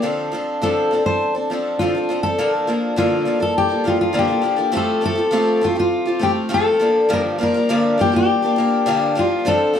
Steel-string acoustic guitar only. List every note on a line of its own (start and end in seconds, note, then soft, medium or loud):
0.63 1.06 A4 medium
1.06 1.33 C5 medium
1.79 2.23 F4 medium
2.23 2.51 A4 loud
2.98 3.42 F4 medium
3.42 3.57 A4 medium
3.58 3.87 G4 medium
3.87 4.00 F4 medium
4.01 4.42 F4 medium
4.19 4.76 G4 medium
4.76 5.04 A4 medium
5.05 5.65 A4 medium
5.65 5.78 F4 medium
5.80 6.24 F4 medium
6.23 6.31 G4 medium
6.54 7.13 A4 medium
7.13 7.21 A#4 loud
7.43 8.01 A#4 medium
8.01 8.15 G4 medium
8.16 9.21 G4 medium
9.19 9.48 F4 medium
9.48 9.80 A4 loud